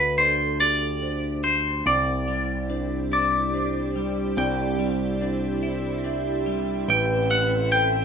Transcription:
0, 0, Header, 1, 6, 480
1, 0, Start_track
1, 0, Key_signature, 0, "major"
1, 0, Tempo, 837989
1, 1063, Time_signature, 6, 3, 24, 8
1, 4610, End_track
2, 0, Start_track
2, 0, Title_t, "Clean electric guitar"
2, 0, Program_c, 0, 27
2, 0, Note_on_c, 0, 71, 67
2, 100, Note_off_c, 0, 71, 0
2, 103, Note_on_c, 0, 72, 65
2, 344, Note_off_c, 0, 72, 0
2, 346, Note_on_c, 0, 74, 75
2, 821, Note_off_c, 0, 74, 0
2, 824, Note_on_c, 0, 72, 63
2, 1067, Note_off_c, 0, 72, 0
2, 1069, Note_on_c, 0, 74, 67
2, 1763, Note_off_c, 0, 74, 0
2, 1793, Note_on_c, 0, 74, 70
2, 2506, Note_off_c, 0, 74, 0
2, 2508, Note_on_c, 0, 79, 66
2, 3442, Note_off_c, 0, 79, 0
2, 3952, Note_on_c, 0, 79, 83
2, 4170, Note_off_c, 0, 79, 0
2, 4186, Note_on_c, 0, 78, 78
2, 4420, Note_off_c, 0, 78, 0
2, 4422, Note_on_c, 0, 79, 82
2, 4610, Note_off_c, 0, 79, 0
2, 4610, End_track
3, 0, Start_track
3, 0, Title_t, "Vibraphone"
3, 0, Program_c, 1, 11
3, 0, Note_on_c, 1, 71, 72
3, 105, Note_off_c, 1, 71, 0
3, 106, Note_on_c, 1, 69, 58
3, 584, Note_off_c, 1, 69, 0
3, 584, Note_on_c, 1, 72, 54
3, 1064, Note_off_c, 1, 72, 0
3, 1068, Note_on_c, 1, 74, 66
3, 1546, Note_off_c, 1, 74, 0
3, 1549, Note_on_c, 1, 72, 55
3, 2021, Note_off_c, 1, 72, 0
3, 2028, Note_on_c, 1, 72, 56
3, 2505, Note_off_c, 1, 72, 0
3, 2506, Note_on_c, 1, 74, 69
3, 2984, Note_off_c, 1, 74, 0
3, 2986, Note_on_c, 1, 72, 59
3, 3464, Note_off_c, 1, 72, 0
3, 3467, Note_on_c, 1, 76, 58
3, 3944, Note_off_c, 1, 76, 0
3, 3944, Note_on_c, 1, 71, 75
3, 4422, Note_off_c, 1, 71, 0
3, 4424, Note_on_c, 1, 69, 65
3, 4610, Note_off_c, 1, 69, 0
3, 4610, End_track
4, 0, Start_track
4, 0, Title_t, "Ambient pad"
4, 0, Program_c, 2, 92
4, 1066, Note_on_c, 2, 64, 66
4, 1067, Note_on_c, 2, 60, 74
4, 1067, Note_on_c, 2, 67, 67
4, 1068, Note_on_c, 2, 74, 82
4, 3920, Note_off_c, 2, 67, 0
4, 3921, Note_off_c, 2, 74, 0
4, 3939, Note_on_c, 2, 76, 77
4, 3940, Note_on_c, 2, 69, 69
4, 4610, Note_off_c, 2, 60, 0
4, 4610, Note_off_c, 2, 64, 0
4, 4610, Note_off_c, 2, 69, 0
4, 4610, Note_off_c, 2, 76, 0
4, 4610, End_track
5, 0, Start_track
5, 0, Title_t, "Clean electric guitar"
5, 0, Program_c, 3, 27
5, 0, Note_on_c, 3, 50, 60
5, 0, Note_on_c, 3, 57, 49
5, 0, Note_on_c, 3, 62, 51
5, 0, Note_on_c, 3, 67, 59
5, 103, Note_off_c, 3, 62, 0
5, 105, Note_on_c, 3, 62, 49
5, 342, Note_off_c, 3, 67, 0
5, 344, Note_on_c, 3, 67, 57
5, 583, Note_off_c, 3, 62, 0
5, 585, Note_on_c, 3, 62, 52
5, 819, Note_off_c, 3, 57, 0
5, 823, Note_off_c, 3, 50, 0
5, 826, Note_on_c, 3, 57, 51
5, 1064, Note_off_c, 3, 57, 0
5, 1064, Note_on_c, 3, 48, 54
5, 1081, Note_off_c, 3, 62, 0
5, 1305, Note_on_c, 3, 55, 46
5, 1544, Note_on_c, 3, 62, 52
5, 1783, Note_off_c, 3, 67, 0
5, 1786, Note_on_c, 3, 64, 59
5, 2020, Note_off_c, 3, 62, 0
5, 2027, Note_on_c, 3, 62, 53
5, 2259, Note_off_c, 3, 55, 0
5, 2263, Note_off_c, 3, 48, 0
5, 2266, Note_on_c, 3, 55, 56
5, 2505, Note_on_c, 3, 48, 59
5, 2737, Note_off_c, 3, 55, 0
5, 2744, Note_on_c, 3, 55, 51
5, 2979, Note_off_c, 3, 62, 0
5, 2986, Note_on_c, 3, 62, 57
5, 3003, Note_off_c, 3, 64, 0
5, 3223, Note_on_c, 3, 64, 66
5, 3454, Note_off_c, 3, 62, 0
5, 3461, Note_on_c, 3, 62, 57
5, 3694, Note_off_c, 3, 55, 0
5, 3701, Note_on_c, 3, 55, 59
5, 3703, Note_off_c, 3, 48, 0
5, 3941, Note_off_c, 3, 55, 0
5, 3941, Note_off_c, 3, 62, 0
5, 3941, Note_on_c, 3, 45, 62
5, 4180, Note_on_c, 3, 57, 52
5, 4420, Note_on_c, 3, 60, 56
5, 4610, Note_off_c, 3, 45, 0
5, 4610, Note_off_c, 3, 57, 0
5, 4610, Note_off_c, 3, 60, 0
5, 4610, Note_off_c, 3, 64, 0
5, 4610, End_track
6, 0, Start_track
6, 0, Title_t, "Picked electric bass"
6, 0, Program_c, 4, 34
6, 0, Note_on_c, 4, 38, 59
6, 1040, Note_off_c, 4, 38, 0
6, 1064, Note_on_c, 4, 36, 59
6, 2480, Note_off_c, 4, 36, 0
6, 2504, Note_on_c, 4, 36, 66
6, 3919, Note_off_c, 4, 36, 0
6, 3942, Note_on_c, 4, 33, 67
6, 4610, Note_off_c, 4, 33, 0
6, 4610, End_track
0, 0, End_of_file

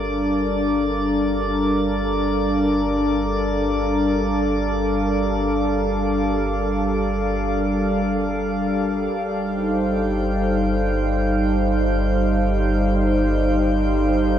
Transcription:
0, 0, Header, 1, 4, 480
1, 0, Start_track
1, 0, Key_signature, -2, "minor"
1, 0, Tempo, 500000
1, 13813, End_track
2, 0, Start_track
2, 0, Title_t, "Synth texture"
2, 0, Program_c, 0, 99
2, 0, Note_on_c, 0, 74, 79
2, 0, Note_on_c, 0, 86, 74
2, 8770, Note_on_c, 0, 79, 72
2, 8776, Note_on_c, 0, 91, 73
2, 8782, Note_off_c, 0, 74, 0
2, 8786, Note_off_c, 0, 86, 0
2, 13813, Note_off_c, 0, 79, 0
2, 13813, Note_off_c, 0, 91, 0
2, 13813, End_track
3, 0, Start_track
3, 0, Title_t, "Analog synth pad"
3, 0, Program_c, 1, 89
3, 0, Note_on_c, 1, 55, 66
3, 0, Note_on_c, 1, 62, 72
3, 0, Note_on_c, 1, 69, 82
3, 0, Note_on_c, 1, 70, 87
3, 0, Note_on_c, 1, 77, 67
3, 8740, Note_off_c, 1, 70, 0
3, 8744, Note_off_c, 1, 62, 0
3, 9051, Note_on_c, 1, 63, 53
3, 9130, Note_on_c, 1, 72, 64
3, 13813, Note_off_c, 1, 55, 0
3, 13813, Note_off_c, 1, 63, 0
3, 13813, Note_off_c, 1, 69, 0
3, 13813, Note_off_c, 1, 72, 0
3, 13813, Note_off_c, 1, 77, 0
3, 13813, End_track
4, 0, Start_track
4, 0, Title_t, "Sub bass"
4, 0, Program_c, 2, 38
4, 0, Note_on_c, 2, 31, 72
4, 8718, Note_off_c, 2, 31, 0
4, 8755, Note_on_c, 2, 31, 68
4, 13813, Note_off_c, 2, 31, 0
4, 13813, End_track
0, 0, End_of_file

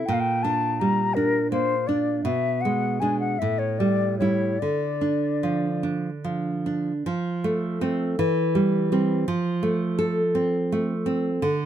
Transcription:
0, 0, Header, 1, 3, 480
1, 0, Start_track
1, 0, Key_signature, -1, "minor"
1, 0, Tempo, 715990
1, 48, Time_signature, 6, 3, 24, 8
1, 1008, Tempo, 750939
1, 1968, Tempo, 796813
1, 2928, Tempo, 823045
1, 4368, Key_signature, -1, "major"
1, 4368, Tempo, 738007
1, 5808, Tempo, 716846
1, 7397, End_track
2, 0, Start_track
2, 0, Title_t, "Flute"
2, 0, Program_c, 0, 73
2, 39, Note_on_c, 0, 79, 75
2, 89, Note_on_c, 0, 77, 60
2, 100, Note_off_c, 0, 79, 0
2, 135, Note_on_c, 0, 79, 73
2, 145, Note_off_c, 0, 77, 0
2, 288, Note_on_c, 0, 81, 75
2, 298, Note_off_c, 0, 79, 0
2, 534, Note_on_c, 0, 82, 64
2, 544, Note_off_c, 0, 81, 0
2, 767, Note_on_c, 0, 70, 74
2, 777, Note_off_c, 0, 82, 0
2, 1009, Note_off_c, 0, 70, 0
2, 1018, Note_on_c, 0, 72, 68
2, 1244, Note_on_c, 0, 74, 59
2, 1254, Note_off_c, 0, 72, 0
2, 1477, Note_off_c, 0, 74, 0
2, 1481, Note_on_c, 0, 76, 60
2, 1716, Note_on_c, 0, 78, 66
2, 1725, Note_off_c, 0, 76, 0
2, 1965, Note_on_c, 0, 80, 60
2, 1974, Note_off_c, 0, 78, 0
2, 2080, Note_off_c, 0, 80, 0
2, 2084, Note_on_c, 0, 78, 65
2, 2199, Note_on_c, 0, 76, 75
2, 2208, Note_off_c, 0, 78, 0
2, 2318, Note_on_c, 0, 73, 63
2, 2327, Note_off_c, 0, 76, 0
2, 2438, Note_on_c, 0, 74, 61
2, 2447, Note_off_c, 0, 73, 0
2, 2675, Note_off_c, 0, 74, 0
2, 2678, Note_on_c, 0, 73, 55
2, 2924, Note_on_c, 0, 74, 59
2, 2933, Note_off_c, 0, 73, 0
2, 3645, Note_off_c, 0, 74, 0
2, 7397, End_track
3, 0, Start_track
3, 0, Title_t, "Nylon-string guitar"
3, 0, Program_c, 1, 24
3, 57, Note_on_c, 1, 46, 57
3, 298, Note_on_c, 1, 62, 48
3, 545, Note_on_c, 1, 55, 43
3, 675, Note_off_c, 1, 62, 0
3, 781, Note_on_c, 1, 62, 47
3, 920, Note_off_c, 1, 55, 0
3, 1018, Note_on_c, 1, 58, 48
3, 1157, Note_off_c, 1, 62, 0
3, 1253, Note_on_c, 1, 62, 40
3, 1390, Note_off_c, 1, 58, 0
3, 1460, Note_off_c, 1, 46, 0
3, 1483, Note_on_c, 1, 47, 55
3, 1485, Note_off_c, 1, 62, 0
3, 1741, Note_on_c, 1, 56, 44
3, 1968, Note_off_c, 1, 56, 0
3, 1974, Note_on_c, 1, 56, 41
3, 1979, Note_on_c, 1, 62, 43
3, 2184, Note_off_c, 1, 47, 0
3, 2184, Note_off_c, 1, 56, 0
3, 2185, Note_off_c, 1, 62, 0
3, 2216, Note_on_c, 1, 45, 50
3, 2447, Note_on_c, 1, 55, 38
3, 2683, Note_off_c, 1, 55, 0
3, 2690, Note_on_c, 1, 55, 36
3, 2697, Note_on_c, 1, 64, 44
3, 2908, Note_off_c, 1, 55, 0
3, 2912, Note_off_c, 1, 64, 0
3, 2913, Note_off_c, 1, 45, 0
3, 2941, Note_on_c, 1, 50, 42
3, 3170, Note_on_c, 1, 62, 38
3, 3413, Note_on_c, 1, 53, 40
3, 3552, Note_off_c, 1, 62, 0
3, 3647, Note_on_c, 1, 62, 35
3, 3795, Note_off_c, 1, 53, 0
3, 3888, Note_on_c, 1, 53, 39
3, 4036, Note_off_c, 1, 62, 0
3, 4130, Note_on_c, 1, 62, 35
3, 4277, Note_off_c, 1, 53, 0
3, 4351, Note_off_c, 1, 50, 0
3, 4364, Note_on_c, 1, 53, 59
3, 4366, Note_off_c, 1, 62, 0
3, 4611, Note_on_c, 1, 57, 54
3, 4845, Note_off_c, 1, 57, 0
3, 4852, Note_on_c, 1, 57, 53
3, 4854, Note_on_c, 1, 60, 60
3, 5069, Note_off_c, 1, 53, 0
3, 5069, Note_off_c, 1, 60, 0
3, 5070, Note_off_c, 1, 57, 0
3, 5097, Note_on_c, 1, 52, 61
3, 5332, Note_on_c, 1, 55, 52
3, 5564, Note_off_c, 1, 55, 0
3, 5572, Note_on_c, 1, 55, 53
3, 5575, Note_on_c, 1, 60, 52
3, 5784, Note_off_c, 1, 55, 0
3, 5786, Note_off_c, 1, 60, 0
3, 5788, Note_off_c, 1, 52, 0
3, 5805, Note_on_c, 1, 53, 65
3, 6039, Note_on_c, 1, 57, 50
3, 6279, Note_on_c, 1, 69, 58
3, 6428, Note_off_c, 1, 57, 0
3, 6522, Note_on_c, 1, 60, 57
3, 6667, Note_off_c, 1, 69, 0
3, 6773, Note_on_c, 1, 57, 52
3, 6906, Note_off_c, 1, 60, 0
3, 6998, Note_on_c, 1, 60, 51
3, 7154, Note_off_c, 1, 57, 0
3, 7219, Note_off_c, 1, 53, 0
3, 7241, Note_on_c, 1, 50, 61
3, 7244, Note_off_c, 1, 60, 0
3, 7397, Note_off_c, 1, 50, 0
3, 7397, End_track
0, 0, End_of_file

